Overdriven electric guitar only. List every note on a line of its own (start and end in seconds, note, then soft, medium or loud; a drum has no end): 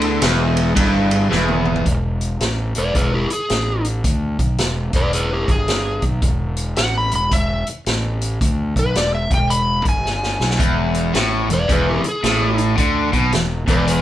0.00 0.21 D3 loud
0.22 0.75 E2 medium
0.76 1.30 G2 loud
1.30 1.84 E2 loud
10.59 11.13 E2 medium
11.14 11.48 A2 medium
11.48 11.65 E2 medium
11.69 12.03 E2 medium
12.04 muted overdriven electric guitar stroke medium
12.24 12.77 A2 medium
12.77 13.11 D3 medium
13.13 13.32 B2 medium
13.33 13.61 E2 medium
13.68 14.02 E2 medium